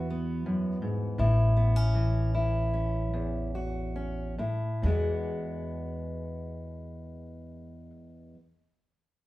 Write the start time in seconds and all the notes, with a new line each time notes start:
Already playing: E2 E3 F#4
0.10 B3
0.46 F#2
0.82 G#2
1.18 A1 A2 E4
1.57 B3
1.76 C#4
1.95 E3
2.34 E4
2.74 C#4
3.14 E2
3.55 F#4
3.96 C#4
4.38 A2 E4
4.82 E2 E3 G#3
4.88 B3 F#4